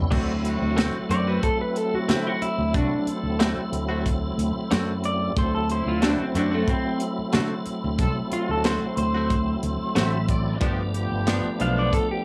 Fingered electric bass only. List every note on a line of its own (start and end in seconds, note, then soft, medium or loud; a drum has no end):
0.12 0.55 D2 medium
0.62 0.90 D2 medium
1.09 1.38 F#2 medium
1.94 muted fingered electric bass stroke soft
2.09 2.24 D3 loud
2.42 muted fingered electric bass stroke soft
2.58 2.76 D2 medium
2.75 2.89 C2 medium
3.07 muted fingered electric bass stroke soft
3.23 3.52 D2 medium
3.72 4.29 D2 medium
4.38 4.53 D2 medium
4.55 muted fingered electric bass stroke soft
4.71 5.28 F#2 medium
5.37 5.80 D2 medium
5.86 6.15 D2 medium
6.35 6.63 F#2 medium
7.19 muted fingered electric bass stroke soft
7.34 7.49 D3 medium
7.66 muted fingered electric bass stroke soft
7.84 8.01 D2 medium
7.99 8.14 C2 medium
8.32 muted fingered electric bass stroke soft
8.49 8.78 D2 medium
8.97 9.54 D2 medium
9.63 9.78 D2 medium
9.81 muted fingered electric bass stroke soft
9.96 10.53 A1 medium
10.61 11.05 G1 medium
11.12 11.40 G1 medium
11.45 muted fingered electric bass stroke soft
11.61 11.89 B1 medium